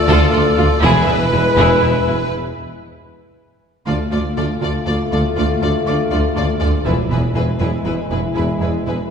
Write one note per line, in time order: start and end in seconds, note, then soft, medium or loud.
0.00 0.78 A3 medium
0.00 0.77 F4 medium
0.00 0.78 A4 medium
0.00 0.78 D5 medium
0.08 0.18 D2 loud
0.08 0.16 D2 loud
0.08 0.31 F4 medium
0.08 0.31 A4 loud
0.32 0.41 D2 medium
0.32 0.43 D2 medium
0.32 0.41 D2 medium
0.32 0.41 F4 medium
0.32 0.40 A4 medium
0.57 0.67 D2 medium
0.57 0.66 D2 medium
0.57 0.65 F4 medium
0.82 0.92 E1 loud
0.82 0.90 E1 medium
0.82 0.91 E2 medium
0.82 2.29 G#3 loud
0.82 2.29 E4 loud
0.82 1.05 E4 medium
0.82 1.05 G#4 loud
0.82 2.29 B4 loud
0.82 2.30 B4 medium
1.07 1.15 E1 medium
1.07 1.17 E1 medium
1.07 1.16 E2 medium
1.07 1.15 E4 medium
1.07 1.16 G#4 medium
1.31 1.39 E1 medium
1.31 1.42 E1 medium
1.31 1.40 E2 medium
1.31 1.40 E4 medium
1.31 1.41 E4 medium
1.57 1.65 E1 medium
1.57 1.67 E1 medium
1.57 1.66 E2 medium
1.57 1.80 E4 medium
1.57 1.80 G#4 medium
1.82 1.90 E1 medium
1.82 1.93 E1 medium
1.82 1.90 E2 medium
1.82 1.90 E4 medium
1.82 1.90 G#4 medium
2.07 2.15 E1 soft
2.07 2.18 E1 soft
2.07 2.15 E2 soft
2.07 2.15 E4 medium
2.07 2.16 E4 medium
3.85 3.96 D2 medium
3.85 3.94 D2 medium
3.85 3.95 D2 medium
3.85 6.81 A3 medium
3.85 6.81 F4 medium
3.85 3.94 F4 medium
3.85 3.95 A4 medium
3.85 3.96 D5 soft
4.11 4.21 D2 medium
4.11 4.20 D2 soft
4.11 4.20 D2 medium
4.11 4.19 F4 soft
4.11 4.20 A4 soft
4.11 4.20 D5 soft
4.36 4.46 D2 medium
4.36 4.45 D2 medium
4.36 4.45 D2 soft
4.36 4.45 F4 soft
4.36 4.45 A4 soft
4.36 4.45 D5 soft
4.61 4.71 D2 medium
4.61 4.70 D2 medium
4.61 4.69 F4 soft
4.61 4.69 A4 soft
4.61 4.71 D5 soft
4.86 4.96 D2 medium
4.86 4.95 D2 medium
4.86 4.95 D2 soft
4.86 4.94 F4 soft
4.86 4.94 A4 soft
4.86 4.96 D5 soft
5.11 5.19 D2 medium
5.11 5.22 D2 medium
5.11 5.21 D2 medium
5.11 5.19 F4 soft
5.11 5.20 A4 medium
5.11 5.21 D5 soft
5.36 5.45 D2 medium
5.36 5.47 D2 medium
5.36 5.44 F4 medium
5.36 5.45 A4 soft
5.36 5.46 D5 medium
5.61 5.69 D2 soft
5.61 5.72 D2 medium
5.61 5.71 D2 medium
5.61 5.70 F4 soft
5.61 5.70 A4 soft
5.61 5.72 D5 medium
5.86 5.94 D2 medium
5.86 5.95 D2 medium
5.86 5.97 D2 medium
5.86 5.95 F4 medium
5.86 5.94 A4 medium
5.86 5.96 D5 medium
6.11 6.19 D2 medium
6.11 6.20 D2 medium
6.11 6.23 D2 medium
6.11 6.19 F4 medium
6.11 6.20 A4 medium
6.11 6.20 D5 soft
6.35 6.44 D2 medium
6.35 6.47 D2 medium
6.35 6.46 D2 medium
6.35 6.44 F4 medium
6.35 6.43 A4 soft
6.35 6.45 D5 medium
6.60 6.69 D2 medium
6.60 6.72 D2 medium
6.60 6.71 D2 medium
6.60 6.68 F4 medium
6.60 6.69 A4 medium
6.60 6.69 D5 medium
6.85 6.94 E1 medium
6.85 6.96 E1 medium
6.85 6.95 E2 medium
6.85 9.11 G#3 medium
6.85 6.93 E4 medium
6.85 9.11 E4 medium
6.85 6.93 G#4 medium
6.85 6.94 B4 medium
7.10 7.19 E1 medium
7.10 7.21 E1 medium
7.10 7.19 E2 medium
7.10 7.18 E4 soft
7.10 7.19 G#4 soft
7.10 7.19 B4 medium
7.35 7.46 E1 medium
7.35 7.44 E1 soft
7.35 7.44 E2 medium
7.35 7.43 E4 medium
7.35 7.43 G#4 medium
7.35 7.44 B4 soft
7.60 7.71 E1 medium
7.60 7.69 E1 medium
7.60 7.68 E2 medium
7.60 7.68 E4 medium
7.60 7.68 G#4 medium
7.60 7.68 B4 soft
7.85 7.96 E1 medium
7.85 7.94 E1 medium
7.85 7.93 E2 medium
7.85 7.93 E4 soft
7.85 7.93 G#4 soft
7.85 7.93 B4 soft
8.10 8.18 E1 soft
8.10 8.21 E1 medium
8.10 8.18 E2 medium
8.10 8.19 E4 soft
8.10 8.18 G#4 medium
8.10 8.20 B4 soft
8.35 8.43 E1 medium
8.35 8.46 E1 medium
8.35 8.44 E2 soft
8.35 8.43 E4 soft
8.35 8.44 G#4 soft
8.35 8.44 B4 soft
8.60 8.68 E1 soft
8.60 8.71 E1 soft
8.60 8.69 E2 soft
8.60 8.68 E4 soft
8.60 8.70 G#4 soft
8.60 8.70 B4 soft
8.85 8.93 E1 soft
8.85 8.96 E1 soft
8.85 8.94 E2 soft
8.85 8.94 E4 soft
8.85 8.95 G#4 soft
8.85 8.95 B4 soft